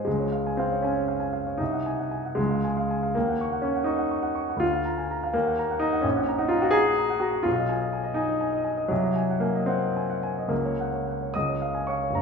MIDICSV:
0, 0, Header, 1, 2, 480
1, 0, Start_track
1, 0, Key_signature, -5, "major"
1, 0, Tempo, 514580
1, 58, Time_signature, 6, 3, 24, 8
1, 2937, Tempo, 487409
1, 4857, Tempo, 475813
1, 5807, Key_signature, 6, "major"
1, 8697, Tempo, 520833
1, 9657, Tempo, 556586
1, 11617, End_track
2, 0, Start_track
2, 0, Title_t, "Grand piano"
2, 0, Program_c, 0, 0
2, 0, Control_c, 0, 64, 127
2, 44, Note_on_c, 0, 56, 55
2, 63, Note_on_c, 0, 37, 45
2, 73, Control_c, 0, 64, 0
2, 187, Note_on_c, 0, 73, 35
2, 234, Control_c, 0, 64, 127
2, 298, Note_on_c, 0, 77, 34
2, 380, Note_off_c, 0, 73, 0
2, 434, Note_on_c, 0, 80, 39
2, 497, Note_off_c, 0, 77, 0
2, 534, Note_on_c, 0, 60, 57
2, 541, Note_off_c, 0, 56, 0
2, 553, Note_on_c, 0, 77, 41
2, 625, Note_off_c, 0, 80, 0
2, 673, Note_on_c, 0, 73, 39
2, 744, Note_off_c, 0, 77, 0
2, 766, Note_on_c, 0, 61, 57
2, 782, Note_off_c, 0, 60, 0
2, 787, Note_on_c, 0, 80, 42
2, 861, Note_off_c, 0, 73, 0
2, 903, Note_on_c, 0, 73, 33
2, 975, Note_off_c, 0, 80, 0
2, 1008, Note_on_c, 0, 77, 35
2, 1090, Note_off_c, 0, 73, 0
2, 1119, Note_on_c, 0, 80, 40
2, 1202, Note_off_c, 0, 77, 0
2, 1241, Note_on_c, 0, 77, 39
2, 1316, Note_off_c, 0, 80, 0
2, 1370, Note_on_c, 0, 73, 36
2, 1438, Note_off_c, 0, 77, 0
2, 1459, Note_off_c, 0, 37, 0
2, 1469, Note_on_c, 0, 63, 64
2, 1482, Note_off_c, 0, 61, 0
2, 1491, Note_off_c, 0, 73, 0
2, 1492, Note_on_c, 0, 36, 47
2, 1509, Control_c, 0, 64, 0
2, 1612, Note_on_c, 0, 78, 34
2, 1649, Control_c, 0, 64, 127
2, 1737, Note_on_c, 0, 80, 39
2, 1804, Note_off_c, 0, 78, 0
2, 1858, Note_on_c, 0, 78, 36
2, 1926, Note_off_c, 0, 80, 0
2, 1970, Note_on_c, 0, 80, 38
2, 2048, Note_off_c, 0, 78, 0
2, 2102, Note_on_c, 0, 78, 34
2, 2166, Note_off_c, 0, 80, 0
2, 2192, Note_on_c, 0, 56, 64
2, 2194, Note_off_c, 0, 36, 0
2, 2204, Note_off_c, 0, 63, 0
2, 2208, Note_on_c, 0, 37, 54
2, 2220, Note_off_c, 0, 78, 0
2, 2235, Control_c, 0, 64, 0
2, 2341, Note_on_c, 0, 77, 34
2, 2397, Control_c, 0, 64, 127
2, 2467, Note_on_c, 0, 80, 39
2, 2534, Note_off_c, 0, 77, 0
2, 2583, Note_on_c, 0, 77, 39
2, 2656, Note_off_c, 0, 80, 0
2, 2710, Note_on_c, 0, 80, 42
2, 2773, Note_off_c, 0, 77, 0
2, 2826, Note_on_c, 0, 77, 39
2, 2895, Note_off_c, 0, 80, 0
2, 2912, Note_off_c, 0, 37, 0
2, 2926, Note_off_c, 0, 56, 0
2, 2937, Note_on_c, 0, 58, 66
2, 2941, Note_off_c, 0, 77, 0
2, 2953, Control_c, 0, 64, 0
2, 2954, Note_on_c, 0, 39, 48
2, 3072, Note_on_c, 0, 78, 37
2, 3109, Control_c, 0, 64, 127
2, 3196, Note_on_c, 0, 85, 40
2, 3259, Note_off_c, 0, 78, 0
2, 3309, Note_on_c, 0, 78, 40
2, 3379, Note_off_c, 0, 85, 0
2, 3398, Note_on_c, 0, 61, 60
2, 3418, Note_off_c, 0, 58, 0
2, 3421, Note_on_c, 0, 85, 37
2, 3492, Note_off_c, 0, 78, 0
2, 3536, Note_on_c, 0, 78, 38
2, 3607, Note_off_c, 0, 85, 0
2, 3618, Note_on_c, 0, 63, 65
2, 3640, Note_on_c, 0, 85, 45
2, 3643, Note_off_c, 0, 61, 0
2, 3725, Note_off_c, 0, 78, 0
2, 3759, Note_on_c, 0, 78, 38
2, 3838, Note_off_c, 0, 85, 0
2, 3887, Note_on_c, 0, 85, 37
2, 3960, Note_off_c, 0, 78, 0
2, 3996, Note_on_c, 0, 78, 41
2, 4085, Note_off_c, 0, 85, 0
2, 4123, Note_on_c, 0, 85, 40
2, 4201, Note_off_c, 0, 78, 0
2, 4261, Note_on_c, 0, 78, 41
2, 4324, Note_off_c, 0, 85, 0
2, 4333, Note_on_c, 0, 38, 48
2, 4349, Note_off_c, 0, 39, 0
2, 4362, Note_off_c, 0, 63, 0
2, 4364, Note_on_c, 0, 65, 75
2, 4381, Note_off_c, 0, 78, 0
2, 4398, Control_c, 0, 64, 0
2, 4496, Note_on_c, 0, 77, 39
2, 4567, Control_c, 0, 64, 127
2, 4616, Note_on_c, 0, 82, 42
2, 4689, Note_off_c, 0, 77, 0
2, 4739, Note_on_c, 0, 80, 41
2, 4809, Note_off_c, 0, 82, 0
2, 4870, Note_on_c, 0, 82, 42
2, 4931, Note_off_c, 0, 80, 0
2, 4995, Note_on_c, 0, 77, 43
2, 5054, Note_off_c, 0, 38, 0
2, 5058, Note_off_c, 0, 82, 0
2, 5092, Note_off_c, 0, 65, 0
2, 5096, Note_on_c, 0, 58, 71
2, 5108, Note_off_c, 0, 77, 0
2, 5115, Control_c, 0, 64, 0
2, 5116, Note_on_c, 0, 39, 54
2, 5228, Note_on_c, 0, 78, 38
2, 5283, Control_c, 0, 64, 127
2, 5352, Note_on_c, 0, 82, 44
2, 5413, Note_off_c, 0, 78, 0
2, 5468, Note_on_c, 0, 78, 46
2, 5533, Note_off_c, 0, 82, 0
2, 5559, Note_on_c, 0, 63, 79
2, 5571, Note_off_c, 0, 58, 0
2, 5588, Note_on_c, 0, 82, 46
2, 5648, Note_off_c, 0, 78, 0
2, 5696, Note_on_c, 0, 78, 46
2, 5767, Note_off_c, 0, 82, 0
2, 5780, Note_on_c, 0, 61, 68
2, 5794, Note_off_c, 0, 39, 0
2, 5800, Note_off_c, 0, 63, 0
2, 5804, Note_on_c, 0, 34, 56
2, 5810, Note_off_c, 0, 78, 0
2, 5825, Control_c, 0, 64, 0
2, 5931, Note_on_c, 0, 78, 45
2, 5976, Control_c, 0, 64, 127
2, 6053, Note_on_c, 0, 82, 39
2, 6120, Note_off_c, 0, 78, 0
2, 6153, Note_off_c, 0, 61, 0
2, 6155, Note_on_c, 0, 63, 69
2, 6160, Note_on_c, 0, 78, 41
2, 6242, Note_off_c, 0, 82, 0
2, 6255, Note_on_c, 0, 65, 72
2, 6280, Note_on_c, 0, 82, 46
2, 6281, Note_off_c, 0, 63, 0
2, 6356, Note_off_c, 0, 78, 0
2, 6391, Note_off_c, 0, 65, 0
2, 6392, Note_on_c, 0, 66, 75
2, 6405, Note_on_c, 0, 78, 43
2, 6476, Note_off_c, 0, 82, 0
2, 6480, Note_on_c, 0, 68, 94
2, 6502, Note_on_c, 0, 82, 52
2, 6520, Note_off_c, 0, 66, 0
2, 6543, Control_c, 0, 64, 0
2, 6598, Note_off_c, 0, 78, 0
2, 6640, Note_on_c, 0, 78, 40
2, 6689, Control_c, 0, 64, 127
2, 6705, Note_off_c, 0, 82, 0
2, 6759, Note_on_c, 0, 82, 48
2, 6832, Note_off_c, 0, 78, 0
2, 6875, Note_on_c, 0, 78, 50
2, 6950, Note_off_c, 0, 82, 0
2, 6976, Note_off_c, 0, 68, 0
2, 6976, Note_on_c, 0, 66, 69
2, 6993, Note_on_c, 0, 82, 48
2, 7067, Note_off_c, 0, 78, 0
2, 7102, Note_on_c, 0, 78, 45
2, 7185, Note_off_c, 0, 82, 0
2, 7195, Note_off_c, 0, 34, 0
2, 7208, Note_on_c, 0, 65, 77
2, 7224, Note_off_c, 0, 66, 0
2, 7229, Note_off_c, 0, 78, 0
2, 7229, Note_on_c, 0, 35, 57
2, 7253, Control_c, 0, 64, 0
2, 7354, Note_on_c, 0, 75, 43
2, 7414, Control_c, 0, 64, 127
2, 7471, Note_on_c, 0, 80, 49
2, 7547, Note_off_c, 0, 75, 0
2, 7598, Note_on_c, 0, 75, 43
2, 7666, Note_off_c, 0, 80, 0
2, 7714, Note_on_c, 0, 80, 43
2, 7789, Note_off_c, 0, 75, 0
2, 7821, Note_on_c, 0, 75, 46
2, 7908, Note_off_c, 0, 80, 0
2, 7928, Note_on_c, 0, 63, 71
2, 7943, Note_off_c, 0, 65, 0
2, 7950, Note_on_c, 0, 80, 49
2, 8022, Note_off_c, 0, 75, 0
2, 8078, Note_on_c, 0, 75, 39
2, 8148, Note_off_c, 0, 80, 0
2, 8194, Note_on_c, 0, 80, 41
2, 8274, Note_off_c, 0, 75, 0
2, 8319, Note_on_c, 0, 75, 45
2, 8393, Note_off_c, 0, 80, 0
2, 8432, Note_off_c, 0, 63, 0
2, 8434, Note_on_c, 0, 80, 48
2, 8519, Note_off_c, 0, 75, 0
2, 8565, Note_on_c, 0, 75, 45
2, 8640, Note_off_c, 0, 80, 0
2, 8652, Note_off_c, 0, 35, 0
2, 8676, Note_on_c, 0, 54, 64
2, 8694, Note_off_c, 0, 75, 0
2, 8700, Note_on_c, 0, 36, 57
2, 8712, Control_c, 0, 64, 0
2, 8820, Note_on_c, 0, 75, 40
2, 8872, Control_c, 0, 64, 127
2, 8930, Note_on_c, 0, 80, 44
2, 9006, Note_off_c, 0, 75, 0
2, 9064, Note_on_c, 0, 78, 39
2, 9122, Note_off_c, 0, 80, 0
2, 9153, Note_on_c, 0, 58, 67
2, 9162, Note_off_c, 0, 54, 0
2, 9178, Note_on_c, 0, 80, 40
2, 9250, Note_off_c, 0, 78, 0
2, 9297, Note_on_c, 0, 75, 42
2, 9368, Note_off_c, 0, 80, 0
2, 9394, Note_on_c, 0, 60, 66
2, 9404, Note_off_c, 0, 58, 0
2, 9414, Note_on_c, 0, 78, 45
2, 9488, Note_off_c, 0, 75, 0
2, 9544, Note_on_c, 0, 75, 36
2, 9608, Note_off_c, 0, 78, 0
2, 9672, Note_on_c, 0, 80, 38
2, 9731, Note_off_c, 0, 75, 0
2, 9787, Note_on_c, 0, 78, 42
2, 9852, Note_off_c, 0, 80, 0
2, 9903, Note_on_c, 0, 80, 43
2, 9972, Note_off_c, 0, 78, 0
2, 10035, Note_on_c, 0, 75, 43
2, 10093, Note_off_c, 0, 80, 0
2, 10104, Note_off_c, 0, 36, 0
2, 10117, Note_on_c, 0, 37, 48
2, 10125, Note_on_c, 0, 58, 66
2, 10128, Note_off_c, 0, 60, 0
2, 10148, Note_off_c, 0, 75, 0
2, 10154, Control_c, 0, 64, 0
2, 10266, Note_on_c, 0, 73, 42
2, 10331, Control_c, 0, 64, 127
2, 10396, Note_on_c, 0, 78, 37
2, 10462, Note_off_c, 0, 73, 0
2, 10507, Note_on_c, 0, 73, 41
2, 10586, Note_off_c, 0, 78, 0
2, 10635, Note_on_c, 0, 78, 34
2, 10700, Note_off_c, 0, 73, 0
2, 10757, Note_on_c, 0, 73, 37
2, 10821, Note_off_c, 0, 78, 0
2, 10833, Note_off_c, 0, 37, 0
2, 10856, Note_on_c, 0, 87, 70
2, 10868, Note_on_c, 0, 75, 56
2, 10869, Note_off_c, 0, 73, 0
2, 10875, Note_on_c, 0, 37, 50
2, 10880, Control_c, 0, 64, 0
2, 10987, Note_on_c, 0, 73, 31
2, 11017, Control_c, 0, 64, 127
2, 11099, Note_on_c, 0, 77, 40
2, 11174, Note_off_c, 0, 73, 0
2, 11208, Note_on_c, 0, 80, 41
2, 11292, Note_off_c, 0, 77, 0
2, 11309, Note_off_c, 0, 75, 0
2, 11315, Note_on_c, 0, 85, 54
2, 11328, Note_on_c, 0, 73, 40
2, 11334, Note_off_c, 0, 58, 0
2, 11336, Note_off_c, 0, 87, 0
2, 11337, Note_on_c, 0, 77, 39
2, 11408, Note_off_c, 0, 80, 0
2, 11450, Note_off_c, 0, 73, 0
2, 11463, Note_on_c, 0, 73, 40
2, 11519, Note_on_c, 0, 30, 45
2, 11530, Note_off_c, 0, 77, 0
2, 11557, Note_on_c, 0, 82, 57
2, 11563, Note_off_c, 0, 37, 0
2, 11566, Note_off_c, 0, 85, 0
2, 11572, Note_on_c, 0, 42, 53
2, 11579, Note_off_c, 0, 73, 0
2, 11594, Control_c, 0, 64, 0
2, 11617, Note_off_c, 0, 30, 0
2, 11617, Note_off_c, 0, 42, 0
2, 11617, Note_off_c, 0, 82, 0
2, 11617, End_track
0, 0, End_of_file